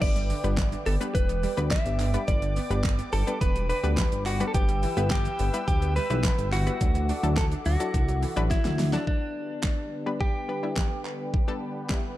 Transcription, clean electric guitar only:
0.02 D5
0.86 A4
1.15 B4
1.71 E5
2.28 D5
3.13 A4
3.41 B4
3.69 B4
4.26 F#4
4.48 A4
4.54 G4
5.11 G4
5.68 G4
5.96 B4
6.53 F#4
7.38 A4
7.66 F#4
8.51 E4
8.93 D4
9.07 D4
10.21 G4

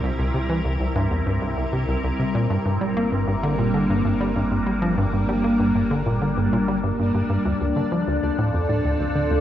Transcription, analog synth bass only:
0.03 C2
0.19 C2
0.34 C3
0.50 E3
0.65 C2
0.80 C2
0.96 G2
1.11 E2
1.27 G2
1.42 C2
1.57 C2
1.73 C3
1.88 C2
2.04 C2
2.19 C3
2.35 A#2
2.50 G2
2.65 G2
2.81 G3
2.97 A#3
3.12 G2
3.27 G2
3.43 D3
3.58 A#2
3.74 D3
3.90 G2
4.05 G2
4.20 G3
4.36 G2
4.51 G2
4.67 G3
4.82 F3
4.98 G2
5.13 G2
5.29 G3
5.44 A#3
5.60 G2
5.75 G2
5.91 D3
6.06 A#2
6.21 D3
6.37 G2
6.53 A#2
6.68 G3
6.83 G2
6.99 G2
7.14 G2
7.30 G2
7.45 D2
7.61 D2
7.76 D3
7.92 F3
8.07 D2
8.23 D2
8.38 A2
8.54 F2
8.69 A2
8.84 D2
9.00 D2
9.15 D3
9.31 D2

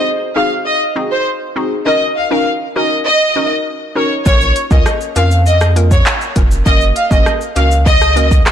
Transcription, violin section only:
0.36 F5
0.66 D#5
1.11 C5
1.86 D#5
2.16 F5
2.31 F5
2.76 D#5
3.06 D#5
3.96 C#5
4.26 C#5
4.71 D#5
5.16 F5
5.46 D#5
5.91 C#5
6.66 D#5
6.96 F5
7.11 D#5
7.56 F5
7.86 D#5

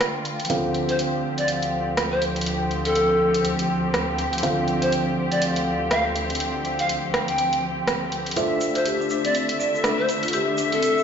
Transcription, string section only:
Already playing: D3 A3 F4
0.50 D2 F3 C4 G4
8.36 D3 A3 E5

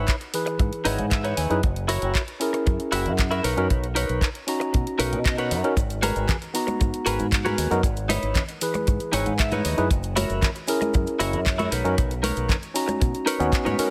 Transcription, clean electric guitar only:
Already playing: D#4 E4 B4 C#5
0.46 muted clean electric guitar stroke
0.59 muted clean electric guitar stroke
0.85 D#4 E4 B4 C#5 D#5
1.11 E5
1.24 D#4 E4 B4 C#5
1.37 G#5
1.88 E4 F#4 A#4 C#5
2.53 muted clean electric guitar stroke
2.66 muted clean electric guitar stroke
2.92 E4 F#4 A#4 E5
3.31 E4 F#4 A#4 E5
3.43 D#4 A#4 B4 C#5
3.95 D#4 A#4 B4 C#5
4.60 muted clean electric guitar stroke
4.73 muted clean electric guitar stroke
4.99 D#4 A#4 B4 C#5
5.25 D#5
5.38 D#4 A#4 B4 C#5 F#5
6.02 F#4 G#4 A#4 B4
6.67 muted clean electric guitar stroke
6.80 muted clean electric guitar stroke
7.06 F#4 G#4 A#4 B4
7.45 F#4 G#4 A#4 B4
8.09 D#4 E4 B4 C#5
8.74 muted clean electric guitar stroke
8.87 muted clean electric guitar stroke
9.13 D#4 E4 B4 C#5 G#5
9.39 E5
9.52 D#4 E4 B4 C#5
9.65 D#5
10.16 E4 F#4 A#4 C#5
10.81 muted clean electric guitar stroke
10.94 muted clean electric guitar stroke
11.20 E4 F#4 A#4 C#5
11.58 E4 F#4 A#4 C#5
11.71 D#4 A#4 B4 C#5
12.23 D#4 A#4 B4 C#5
12.88 muted clean electric guitar stroke
13.01 muted clean electric guitar stroke
13.26 D#4 A#4 B4 C#5
13.65 D#4 A#4 B4 C#5

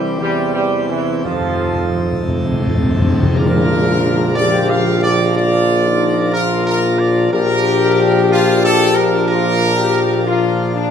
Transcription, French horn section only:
Already playing: E3
0.19 E3
0.54 E3
0.90 C3
1.25 C3
3.36 D4
4.36 G4
5.35 F4
5.85 D#4
6.34 F4
7.33 G4
9.29 F4
9.77 G4
10.27 F4
10.75 D4

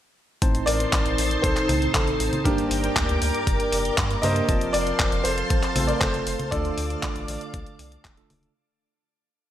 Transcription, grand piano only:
0.66 A#4 D5
1.42 A4 C5
1.93 D#4 A4
2.44 D4 G4
4.22 C5 D#5
4.73 A#4 D5
5.24 A4 C5
5.87 A#4 D5
6.00 A4 C5
6.51 A4 D5

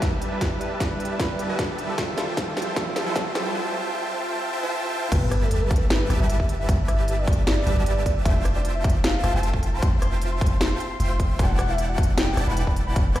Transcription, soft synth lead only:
5.12 B4
5.42 A4
5.61 B4
5.90 B4
6.20 E5
6.59 E5
6.88 E5
7.18 D5
8.26 E5
8.56 D5
8.75 E5
9.04 F5
9.34 A5
9.74 C6
10.02 C6
10.32 C6
11.39 F#5
11.69 E5
11.89 F#5
12.18 G5
12.48 B5
12.87 B5
13.16 B5

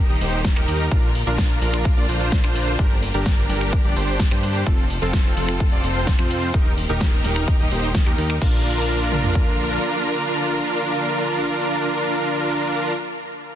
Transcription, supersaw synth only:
0.09 D#4 G4 D#5
0.21 D#4 G4 C5
0.56 D#4 G4 A#4
0.68 D#4 G4 A#4
1.27 D4 F4 A#4
1.62 D4 F4 A#4
1.97 D4 F4 D5
2.09 D4 F4 C5
2.44 D4 F4 C5
2.79 D4 G4 A#4
3.14 D4 G4 A#4
3.49 D4 G4 A#4
3.84 D4 G4 D5
3.96 D4 G4 C5
4.31 D4 G4 C5
4.67 C4 F4 A4
5.02 C4 F4 A4
5.37 C4 F4 A4
5.72 C4 F4 D5
5.84 C4 F4 C5
6.19 C4 F4 C5
6.54 D#4 A#4
6.89 D#4 G4 A#4
7.24 D#4 G4 A#4
7.60 D#4 G4 D#5
7.71 D#4 G4 C5
8.06 D#4 G4 A#4
8.18 D#4 G4 A#4
8.42 D4 F4 A#4

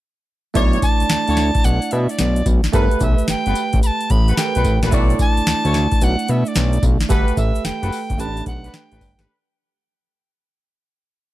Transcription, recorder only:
0.83 A5
1.65 F#5
1.92 E5
2.10 D5
3.02 E5
3.29 G5
3.83 A5 B5
4.11 B5
4.38 G5
5.21 A5
6.04 F#5
6.30 E5
6.48 D5
7.37 E5
7.65 G5
8.20 A5
8.47 F#5
8.75 G5

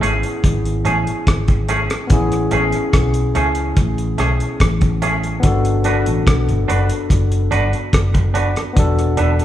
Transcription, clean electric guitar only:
0.01 A3 C#4 G#4
0.85 A3 C#4 G#4
1.48 muted clean electric guitar stroke
1.69 A3 C#4 G#4
2.51 A3 C#4 G#4
3.35 A3 C#4 G#4
4.18 A3 C#4 G#4
4.82 muted clean electric guitar stroke
5.02 A3 C#4 G#4
5.85 D4 F#4 B4
6.68 D4 F#4 B4
7.51 D4 F#4 B4
8.14 muted clean electric guitar stroke
8.34 D4 F#4 B4
9.17 D4 A4 B4

